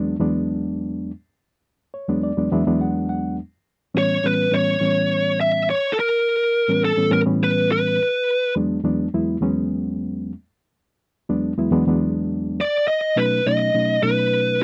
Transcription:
Already playing: E2 F#3 G#3 B3 D4
0.20 E2 F#3 G#3 B3 D4
1.94 C#5
2.08 E2 F#3 G#3 B3 D4
2.23 D5
2.37 E2 F#3 G#3 B3 D4
2.51 E2 F#3 G#3 B3 D4 E5
2.67 E2 F#3 G#3 B3 D4
2.81 F#5
3.09 F#5
3.94 A2 E3 G3 B3 C#4 C#5
4.24 A2 E3 G3 B3 C#4 B4
4.51 A2 E3 G3 B3 C#4 C#5
4.81 A2 E3 G3 B3 C#4
5.41 E5
5.70 C#5
5.93 A4
5.99 A#4
6.68 A2 E3 G3 B3 C#4
6.85 A4
6.97 A2 E3 G3 B3 C#4
7.10 A2 E3 G3 B3 C#4 A#4
7.26 A2 E3 G3 B3 C#4
7.43 B4
7.72 B4
8.56 E2 F#3 G#3 B3 D4
8.84 E2 F#3 G#3 B3 D4
9.13 E2 F#3 G#3 B3 E4
9.41 E2 F#3 G#3 B3 C#4
11.29 E2 F#3 G#3 B3 D4
11.58 E2 F#3 G#3 B3 E4
11.72 E2 F#3 G#3 B3 D4
11.87 E2 F#3 G#3 B3 D4
12.61 D5
12.87 D#5
13.16 B2 F#3 A3 C#4 D#4 B4
13.46 B2 F#3 A3 C#4 D#4 D#5
13.74 B2 F#3 A3 C#4 D#4
14.03 B2 F#3 A3 C#4 D#4 B4

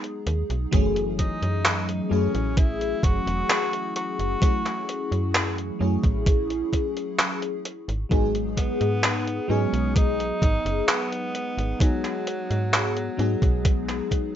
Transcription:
Already playing: F#3 G#3 B3 D#4 G#4
0.04 closed hi-hat
0.26 D#2, closed hi-hat
0.50 B1, closed hi-hat
0.71 F#1 E3 F#3 A3 C#4 G#4, kick, closed hi-hat
0.96 closed hi-hat
1.19 D#4, kick, closed hi-hat
1.42 F#2, closed hi-hat
1.65 clap, closed hi-hat
1.89 closed hi-hat
2.04 D#4
2.09 F#2 F#3 A3 C#4 E4 G#4
2.35 A1, closed hi-hat
2.57 E4, kick, closed hi-hat
2.81 closed hi-hat
3.03 F#1 F#4, kick, closed hi-hat
3.27 E1, closed hi-hat
3.50 clap, closed hi-hat
3.73 closed hi-hat
3.96 F#4, closed hi-hat
4.19 F#1, closed hi-hat
4.41 F#3 A3 C#4 E4 G#4, kick, closed hi-hat
4.66 clap, closed hi-hat
4.89 closed hi-hat
5.11 F#2, closed hi-hat
5.35 clap, closed hi-hat
5.58 closed hi-hat
5.79 F#2 F#3 A3 C#4 E4 G#4
6.04 A1, kick, closed hi-hat
6.26 kick, closed hi-hat
6.50 closed hi-hat
6.73 kick, closed hi-hat
6.97 closed hi-hat
7.19 clap, closed hi-hat
7.42 closed hi-hat
7.65 closed hi-hat
7.88 G#1, closed hi-hat
8.09 G#1 F#3 G#3 B3 D#4 G#4, kick, closed hi-hat
8.35 closed hi-hat
8.57 B3, kick, closed hi-hat
8.81 G#2, closed hi-hat
9.04 clap, closed hi-hat
9.27 closed hi-hat
9.48 G#2 F#3 G#3 B3 C#4 D#4 G#4
9.73 B1, closed hi-hat
9.96 D#4, kick, closed hi-hat
10.20 closed hi-hat
10.42 G#1, kick, closed hi-hat
10.65 F#1, closed hi-hat
10.88 B3, clap, closed hi-hat
11.12 closed hi-hat
11.35 closed hi-hat
11.57 G#1, closed hi-hat
11.79 F#3 G#3 B3 D#4 G#4, kick, closed hi-hat
12.05 clap, closed hi-hat
12.27 closed hi-hat
12.50 G#2, closed hi-hat
12.73 clap, closed hi-hat
12.97 closed hi-hat
13.17 G#2 F#3 G#3 B3 D#4 G#4, closed hi-hat
13.42 B1, kick, closed hi-hat
13.65 kick, closed hi-hat
13.89 clap, closed hi-hat
14.11 kick, closed hi-hat

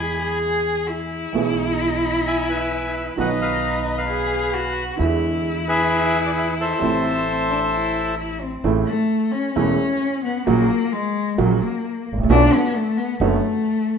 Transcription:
Already playing: E2 E3 G#3 B3 G#4 G#5 B5
0.18 G#4
0.88 E4
1.32 B1 B2 E3 G#3 B3 G#4
2.05 B5
2.27 E5 G#5 B5
2.49 B4 E5 G#5
2.97 E5
3.16 B1 B2 D#3 F#3 B3 D#4
3.20 F#4 B4 D#5 F#5
3.42 B4 F5
3.88 D#5
3.98 B4 F5
4.08 G#4
4.54 F#4
4.97 E2 D3 E3 G#3 B3 E4
5.01 E4
5.68 G#4 B4 E5
6.26 D5
6.37 E5
6.61 A4 C5 E5
6.79 A1 A2 C3 E3 A3 C4
6.83 E4
7.27 C4
7.49 D4
7.72 E4
8.17 E4
8.40 C4
8.64 A1 A2 C#3 E3 A3 E4
8.86 A3
9.31 C#4
9.54 E1 E2 C#3 E3 A3 C#4 E4
10.24 B3
10.47 A#1 A#2 C#3 F#3 A#3 F#4
10.92 G#3
11.38 A#1 A#2 C#3 F#3 A#3 F#4
11.62 A#3
12.12 G#1
12.18 A1
12.23 A#1
12.29 B1 B2 D3 A3 B3 D4 F#4
12.53 B3
12.74 A3
12.97 B3
13.20 F#1 F#2 D3 A3 B3 F#4

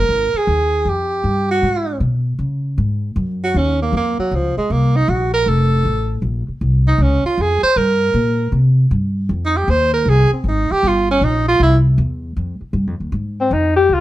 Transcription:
Already playing: A#4
0.09 G#1
0.33 G#4, muted upright bass stroke
0.47 D#2
0.85 F2 G4
1.24 G2
1.51 F#4
1.62 G#2
2.00 B2
2.39 C#3
2.78 G#2
3.16 F#2
3.43 F#4
3.54 D#2 C#4
3.82 A#3
3.93 F2
3.97 A#3
4.18 F#3, muted upright bass stroke
4.31 C#2 F3
4.57 G#3, muted upright bass stroke
4.70 C2 A#3
4.96 D#4
5.08 A#1 F#4
5.34 A#4
5.46 F1 A4
5.85 A1
6.22 A#1
6.48 muted upright bass stroke
6.61 C2
6.88 D#4
6.98 C#2 C#4
7.24 F4, muted upright bass stroke
7.38 F2 G#4
7.63 C5, muted upright bass stroke
7.76 G2 A#4
8.14 A#2
8.52 C3
8.91 G2
9.29 F2
9.46 D#4
9.57 G4
9.68 D#2 C5
9.93 A#4
10.05 C2 G#4
10.33 C4
10.44 G#1
10.48 D#4
10.71 G4, muted upright bass stroke
10.83 G1
10.88 F4
11.11 C#4
11.21 A#1 D#4
11.48 F4
11.59 C2 E4
11.98 E2
12.36 F2
12.61 muted upright bass stroke
12.73 G2
12.87 F2
13.00 D#2
13.12 G#2
13.40 C4
13.51 F2 D#4
13.76 G4
13.89 C#2
13.93 F4

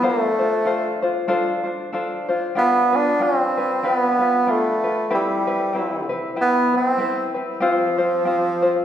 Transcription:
0.02 A3 D4 F4 A4 C5
0.39 D4 F4 C5
0.65 D4 F4 A4 C5
1.02 D4 F4 C5
1.28 D4 F4 A4 C5
1.64 D4 C5
1.92 D4 F4 A4 C5
2.29 D4 F4 C5
2.55 B3 D4 F4 G4 B4
2.92 D4 F4 B4
3.20 C4 D4 F4 G4 B4
3.57 D4 F4 B4
3.83 B3 D4 F4 G4 B4
4.19 D4 F4 B4
4.47 D4 F4 G4 B4
4.51 A3
4.84 D4 F4 B4
5.10 C4 E4 G4 B4
5.15 G3
5.47 C4 E4 B4
5.73 C4 E4 G4 B4
6.09 C4 E4 B4
6.36 E4 G4 B4
6.41 B3
6.73 C4 E4 B4
6.98 C4 E4 G4 B4
7.34 C4 E4 B4
7.60 C4 F4 G4 C5
7.66 F3
7.98 C4 F4 C5
8.25 C4 F4 G4 C5
8.62 C4 F4 C5

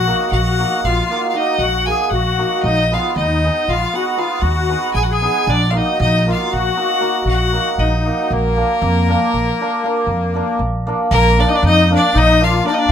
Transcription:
Already playing: A#1 F#4 F#5
0.07 A#3 D#4 F#4 A#4
0.31 A#1 F#4 F#5
0.59 A#3 D#4 F#4 A#4
0.84 A#1 F4 F5
1.10 A#3 D#4 F#4 A#4
1.29 F4 F5
1.34 A#3 D#4 F#4 A#4 D#5
1.58 A#1 F#4 F#5
1.86 A#3 D#4 F#4 G#4 A#4 G#5
2.03 G#4 G#5
2.10 A#1 F#4 F#5
2.38 A#3 D#4 F#4 A#4
2.62 A#1 D#4 D#5
2.91 B3 D#4 F4 G#4 B4 F5
3.16 D#2 D#4 D#5
3.44 B3 D#4 G#4 B4
3.68 A#1 F4 F5
3.93 B3 D#4 F#4 G#4 B4 F#5
4.17 B3 D#4 F4 G#4 B4 F5
4.42 D#2 F#4 F#5
4.69 B3 D#4 G#4 B4
4.93 A#1 G#4 G#5
5.03 F#4 F#5
5.10 G#4 G#5
5.21 B3 D#4 G#4 B4
5.47 A#1 D4 D5
5.69 A#3 D#4 F4 F5
5.73 D#4 F#4 A#4 D#5
6.00 A#1 D#4 D#5
6.26 A#3 D#4 F4 F#4 A#4
6.31 F5
6.51 A#1 F#4 F#5
6.76 A#3 D#4 F#4 A#4
7.00 A#3 D#4 F#4 A#4
7.25 A#1 F#4 F#5
7.52 A#3 D#4 F#4 A#4
7.78 A#1 D#4 D#5
8.05 A#3 D#4 F#4 A#4
8.30 A#1 A#3 A#4
8.56 A#3 D4 F4 A#4
8.82 F2
9.08 A#3 D4 F4 A#4
9.34 A#1
9.60 A#3 D4 F4 A#4
9.84 A#3 D4 F4 A#4
10.07 F2
10.34 A#3 D4 F4 A#4
10.59 A#1
10.87 A#3 D4 F4 A#4
11.11 A#1 A#3 A#4
11.39 A#3 D4 F4 A#4 D5
11.46 D#4 D#5
11.51 D4
11.56 D5
11.63 F2 D#4 D#5
11.90 A#3 D4 F4 A#4
11.95 D5
12.15 A#1 D#4 D#5
12.41 A#3 D4 F4 A#4 F5
12.65 A#3 D4 F4 A#4 D5
12.70 D#4 D#5
12.77 D4 D5
12.89 F2

